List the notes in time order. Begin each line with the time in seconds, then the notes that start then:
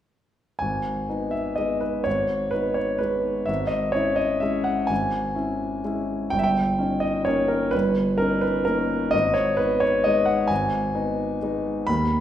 0.59 G#1 G#5
1.09 B3 D#4
1.31 E5
1.56 G#3 B3 D#4 D#5
1.81 B4
2.04 G#1 C#5
2.51 B3 D#4 B4
2.74 C#5
2.98 G#3 B3 D#4 B4
3.46 G#1 E5
3.67 D#5
3.92 C#4 E4 C#5
4.16 D#5
4.40 G#3 C#4 E4 E5
4.64 F#5
4.87 G#1 G#5
5.35 C#4 E4
5.85 G#3 C#4 E4
6.30 G1 G5
6.39 E5
6.43 G5
6.79 C#4 D#4
7.00 D#5
7.25 A#3 C#4 D#4 C#5
7.48 A#4
7.71 G1 B4
8.18 C#4 D#4 A#4
8.41 B4
8.65 A#3 C#4 D#4 A#4
9.11 G#1 D#5
9.34 C#5
9.57 B3 D#4 B4
9.80 C#5
10.04 G#3 B3 D#4 D#5
10.25 F#5
10.47 G#1 G#5
10.95 B3 D#4
11.42 G#3 B3 D#4
11.87 D#2 B5